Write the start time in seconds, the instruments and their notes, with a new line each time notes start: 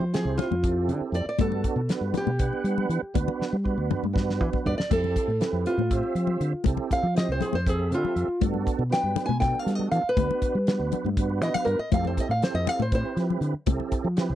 Already playing: nylon-string guitar C5
0.00 fingered electric bass F3, low conga
0.13 tonewheel organ C4 E4 G4 C5, nylon-string guitar G#4, snare, closed hi-hat
0.25 fingered electric bass C2
0.38 nylon-string guitar F4, muted fingered electric bass stroke, snare, closed hi-hat, low conga
0.51 fingered electric bass F2, high conga
0.63 tonewheel organ C4 E4 G4 A4, kick, closed hi-hat
0.88 fingered electric bass D3, closed hi-hat, low conga
1.01 muted fingered electric bass stroke
1.12 fingered electric bass F2, nylon-string guitar D5, closed hi-hat
1.26 nylon-string guitar D5, muted fingered electric bass stroke
1.39 fingered electric bass G2, tonewheel organ B3 D4 F#4 A4, nylon-string guitar A4, kick, closed hi-hat, high conga
1.52 low conga
1.64 kick, closed hi-hat, low conga
1.76 fingered electric bass B2, low conga
1.89 tonewheel organ B3 D4 F#4 B4, snare, closed hi-hat
2.01 fingered electric bass G2
2.14 nylon-string guitar G4, snare, closed hi-hat, low conga
2.27 fingered electric bass B2, high conga
2.39 tonewheel organ B3 D4 B4 F#5, kick, closed hi-hat
2.53 low conga
2.64 fingered electric bass G3, closed hi-hat
2.78 low conga
2.89 fingered electric bass E3, closed hi-hat
3.02 muted fingered electric bass stroke
3.14 fingered electric bass D2, tonewheel organ B3 D4 F#4 B4, kick, closed hi-hat, high conga
3.28 low conga
3.39 muted fingered electric bass stroke, snare
3.53 fingered electric bass G3
3.64 tonewheel organ B3 D4 F#4 B4, kick
3.77 fingered electric bass D2
3.91 muted fingered electric bass stroke, mid tom, low conga
4.03 fingered electric bass G2, high conga
4.13 tonewheel organ B3 D4 F#4 B4, kick, snare
4.30 snare
4.41 fingered electric bass E3, kick
4.53 muted fingered electric bass stroke, kick, low conga
4.66 fingered electric bass G2, nylon-string guitar D5, floor tom
4.78 nylon-string guitar D5, muted fingered electric bass stroke, snare, low conga
4.90 fingered electric bass F2, tonewheel organ C4 E4 G4 A4, nylon-string guitar A4, kick, closed hi-hat, crash, high conga
5.04 low conga
5.16 kick, closed hi-hat, low conga
5.28 fingered electric bass A2, low conga
5.40 tonewheel organ C4 E4 G4 B4, snare, closed hi-hat
5.53 fingered electric bass F2
5.66 nylon-string guitar F4, closed hi-hat
5.78 fingered electric bass A2, high conga
5.91 tonewheel organ C4 G4 C5 E5, kick, closed hi-hat
6.03 low conga
6.15 fingered electric bass F3, closed hi-hat, low conga
6.27 low conga
6.40 fingered electric bass D3, closed hi-hat
6.53 muted fingered electric bass stroke
6.64 fingered electric bass C2, tonewheel organ C4 E4 G4 A4, kick, closed hi-hat, high conga
6.77 low conga
6.90 nylon-string guitar F5, muted fingered electric bass stroke, kick, closed hi-hat, low conga
7.03 fingered electric bass F3
7.14 tonewheel organ C4 E4 G4 C5, nylon-string guitar D#5, snare, closed hi-hat
7.28 fingered electric bass C2, nylon-string guitar C5
7.41 nylon-string guitar G#4, muted fingered electric bass stroke, closed hi-hat, low conga
7.53 fingered electric bass F2, nylon-string guitar C5, high conga
7.66 tonewheel organ C4 G4 A4 E5, nylon-string guitar G#4, kick, closed hi-hat
7.79 low conga
7.91 fingered electric bass D3, nylon-string guitar F4, closed hi-hat, low conga
8.04 muted fingered electric bass stroke, low conga
8.16 fingered electric bass F2, closed hi-hat
8.28 muted fingered electric bass stroke
8.41 fingered electric bass G2, tonewheel organ B3 D4 F#4 A4, kick, closed hi-hat, high conga
8.54 low conga
8.66 kick, closed hi-hat, low conga
8.79 fingered electric bass B2, low conga
8.90 tonewheel organ F#3 B3 D4 B4, nylon-string guitar G5, snare, closed hi-hat
9.03 fingered electric bass G2
9.16 snare, closed hi-hat, low conga
9.26 fingered electric bass B2, nylon-string guitar G#5, high conga
9.40 tonewheel organ B3 D4 F#4 A4, nylon-string guitar G5, kick, snare, closed hi-hat
9.55 low conga
9.59 nylon-string guitar F5
9.66 fingered electric bass G3, snare, closed hi-hat, low conga
9.75 nylon-string guitar D#5
9.79 low conga
9.91 fingered electric bass E3, nylon-string guitar F5, closed hi-hat
10.03 muted fingered electric bass stroke
10.09 nylon-string guitar B4
10.17 fingered electric bass D2, tonewheel organ B3 D4 F#4 B4, kick, closed hi-hat, high conga
10.31 low conga
10.42 muted fingered electric bass stroke, kick, closed hi-hat
10.55 fingered electric bass G3
10.67 tonewheel organ B3 D4 F#4 B4, snare, closed hi-hat
10.79 fingered electric bass D2
10.92 muted fingered electric bass stroke, closed hi-hat, low conga
11.04 fingered electric bass G2, high conga
11.17 tonewheel organ B3 D4 F#4 B4, kick, closed hi-hat, low conga
11.30 low conga
11.41 fingered electric bass E3, nylon-string guitar D#5, snare, closed hi-hat
11.54 nylon-string guitar F5, muted fingered electric bass stroke, low conga
11.65 fingered electric bass G2, nylon-string guitar A#4, closed hi-hat, low conga
11.79 nylon-string guitar D#5, muted fingered electric bass stroke
11.92 fingered electric bass F2, tonewheel organ C4 E4 G4 A4, nylon-string guitar F5, kick, closed hi-hat, high conga
12.05 nylon-string guitar C5, low conga
12.17 nylon-string guitar D#5, kick, closed hi-hat, low conga
12.29 fingered electric bass A2, nylon-string guitar F5, low conga
12.42 tonewheel organ C4 E4 G4 A4, nylon-string guitar C5, snare, closed hi-hat
12.54 fingered electric bass F2, nylon-string guitar D#5
12.67 nylon-string guitar F5, closed hi-hat, low conga
12.79 fingered electric bass A2, nylon-string guitar C5, high conga
12.92 tonewheel organ C4 E4 G4 B4, nylon-string guitar C5, kick, closed hi-hat
13.06 low conga
13.16 fingered electric bass F3, snare, closed hi-hat, low conga
13.30 low conga
13.41 fingered electric bass D3, closed hi-hat
13.53 muted fingered electric bass stroke
13.66 fingered electric bass C2, tonewheel organ C4 E4 G4 A4, kick, closed hi-hat, high conga
13.80 low conga
13.92 muted fingered electric bass stroke, kick, closed hi-hat, low conga
14.04 fingered electric bass F3, low conga
14.17 tonewheel organ C4 E4 G4 B4, snare, closed hi-hat
14.30 fingered electric bass C2